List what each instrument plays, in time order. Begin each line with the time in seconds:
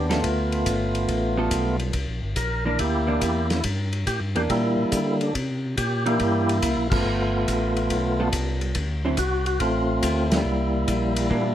Already playing: tonewheel organ D#2 B3 D4
0.09 hollow-body jazz guitar G3 B3 F4 A4, tonewheel organ A3 B3 F4, snare, ride
0.24 tonewheel organ D2, kick, ride
0.52 ride
0.66 tonewheel organ G1, kick, hi-hat pedal, ride
0.95 ride
1.08 tonewheel organ A1, kick, ride
1.37 hollow-body jazz guitar G3 B3 F4 A4
1.51 tonewheel organ B1, kick, hi-hat pedal, ride
1.80 ride
1.93 tonewheel organ C2, kick, ride
2.07 tonewheel organ A#1
2.22 tonewheel organ G1
2.36 tonewheel organ A#1 A#4, kick, hi-hat pedal, ride
2.65 hollow-body jazz guitar E3 A#3 D4, tonewheel organ A#4
2.79 tonewheel organ D2 A#3 E4 G4, kick, ride
3.07 hollow-body jazz guitar E3 A#3 D4
3.21 tonewheel organ E2, kick, hi-hat pedal, ride
3.50 tonewheel organ E4, snare, ride
3.64 tonewheel organ G2, kick, ride
3.93 ride
4.06 tonewheel organ A2 G4, kick, hi-hat pedal, ride
4.20 tonewheel organ G2
4.35 tonewheel organ E2 G4, hollow-body jazz guitar E3 A#3 D4, ride
4.50 tonewheel organ A#2 G3 A#3 E4, kick, ride
4.78 tonewheel organ A#2
4.92 tonewheel organ D3, kick, hi-hat pedal, ride
5.21 tonewheel organ D4, ride
5.35 tonewheel organ C3, kick, ride
5.77 tonewheel organ A#2 G4, kick, hi-hat pedal, ride
6.06 hollow-body jazz guitar E3 A#3 D4, tonewheel organ A#3 E4 G4, ride
6.20 tonewheel organ G2, kick, ride
6.49 ride
6.62 tonewheel organ C2, kick, hi-hat pedal, ride
6.76 tonewheel organ A#1
6.90 tonewheel organ G1 A3 B3 F4, kick, crash
7.05 tonewheel organ G1
7.48 tonewheel organ A1, kick, hi-hat pedal, ride
7.77 ride
7.90 tonewheel organ B1, kick, ride
8.20 hollow-body jazz guitar G3 B3 F4 A4
8.33 tonewheel organ C2, kick, hi-hat pedal, ride
8.61 ride
8.75 tonewheel organ D2, kick, ride
9.05 hollow-body jazz guitar D3 F#3 C4 E4
9.17 tonewheel organ C2 F#4, kick, hi-hat pedal, ride
9.46 tonewheel organ F#4, ride
9.60 tonewheel organ A1 A3 C4 F4, kick, ride
10.02 tonewheel organ D2, kick, hi-hat pedal, ride
10.30 tonewheel organ G3 A#3 E4, snare, ride
10.45 tonewheel organ C2
10.88 tonewheel organ A#1, kick, hi-hat pedal, ride
11.16 ride
11.30 tonewheel organ A#2, hollow-body jazz guitar E3 A#3 D4, kick